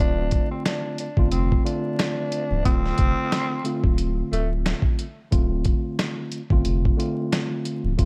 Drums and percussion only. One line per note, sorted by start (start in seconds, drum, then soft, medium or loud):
0.31 kick medium
0.31 closed hi-hat medium
0.66 finger snap medium
0.66 snare loud
0.66 closed hi-hat loud
0.98 closed hi-hat medium
1.17 kick loud
1.32 closed hi-hat medium
1.52 kick medium
1.66 closed hi-hat medium
1.99 finger snap medium
1.99 snare loud
1.99 closed hi-hat loud
2.32 closed hi-hat medium
2.65 kick loud
2.65 closed hi-hat loud
2.86 snare soft
2.98 kick loud
2.98 closed hi-hat medium
3.32 finger snap medium
3.32 snare loud
3.32 closed hi-hat loud
3.65 closed hi-hat medium
3.84 kick loud
3.98 closed hi-hat medium
4.33 closed hi-hat medium
4.66 finger snap medium
4.66 snare loud
4.66 closed hi-hat loud
4.82 kick medium
4.99 closed hi-hat medium
5.32 kick loud
5.32 closed hi-hat medium
5.65 kick loud
5.65 closed hi-hat medium
5.99 finger snap medium
5.99 snare loud
5.99 closed hi-hat loud
6.32 closed hi-hat medium
6.50 kick loud
6.65 closed hi-hat medium
6.85 kick medium
7.00 closed hi-hat medium
7.32 finger snap medium
7.32 snare loud
7.32 closed hi-hat loud
7.65 closed hi-hat medium
7.99 kick loud
7.99 closed hi-hat medium